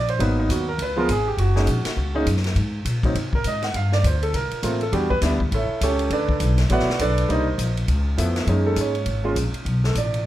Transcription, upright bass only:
0.00 0.19 A#1 medium
0.19 0.48 G#1 medium
0.49 0.78 D#2 medium
0.78 1.07 C#2 medium
1.08 1.37 G#1 medium
1.37 1.66 F#1 medium
1.67 1.84 A#1 medium
1.86 muted upright bass stroke soft
1.97 2.26 C#2 medium
2.26 2.55 F#2 medium
2.55 2.84 G#2 medium
2.85 3.14 A#2 medium
3.15 3.44 C3 medium
3.44 3.73 G#2 medium
3.74 4.03 G2 medium
4.03 4.32 D2 medium
4.33 4.50 C2 medium
4.52 muted upright bass stroke soft
4.63 4.92 A1 medium
4.92 5.21 E2 medium
5.21 5.51 D2 medium
5.52 5.68 A1 medium
5.69 muted upright bass stroke soft
5.81 6.10 C#2 medium
6.10 6.39 D2 medium
6.40 6.69 B1 medium
6.69 6.86 A1 medium
6.87 muted upright bass stroke soft
6.99 7.28 B1 medium
7.29 7.57 C2 medium
7.58 7.87 A#1 medium
7.88 8.17 C#2 medium
8.18 8.46 F2 medium
8.46 8.75 F#2 medium
8.76 9.05 G#2 medium
9.06 9.35 G#1 medium
9.36 9.53 A#1 medium
9.54 muted upright bass stroke soft
9.65 9.94 B1 medium
9.95 10.24 A1 medium

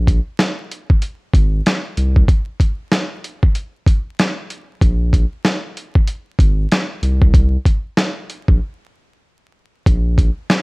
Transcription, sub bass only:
0.00 0.20 A#1 loud
1.34 1.61 G#1 medium
1.97 2.24 C2 medium
4.81 5.25 A#1 loud
6.39 6.66 G#1 loud
7.02 7.57 C2 loud
8.48 8.59 A#1 medium
9.86 10.30 A#1 loud

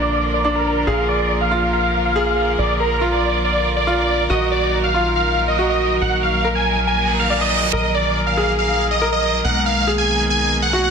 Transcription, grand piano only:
0.00 0.36 D4 medium
0.44 0.85 D4 medium
0.87 1.43 G#4 medium
1.51 2.07 F4 medium
2.16 2.93 G#4 medium
3.01 3.79 F4 medium
3.87 4.28 F4 medium
4.30 4.86 F#4 medium
4.94 5.50 F4 medium
5.59 6.36 F#4 medium
6.44 7.22 A#4 medium
7.30 7.71 D5 medium
7.73 8.29 A#4 medium
8.37 8.93 G#4 medium
9.02 9.79 A#4 medium
9.87 10.64 G#4 medium
10.73 10.90 F#4 medium

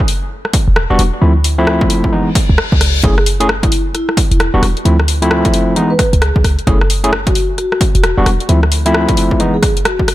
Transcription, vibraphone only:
3.03 3.20 G#4 loud
3.63 3.76 E4 medium
3.94 4.11 E4 loud
4.31 4.44 E4 medium
5.90 6.03 B4 medium
6.22 6.34 G#4 medium
6.67 6.84 A4 loud
7.27 7.39 F#4 medium
7.58 7.75 F#4 loud
7.95 8.08 F#4 medium
9.54 9.67 G#4 medium
9.85 9.98 F#4 medium

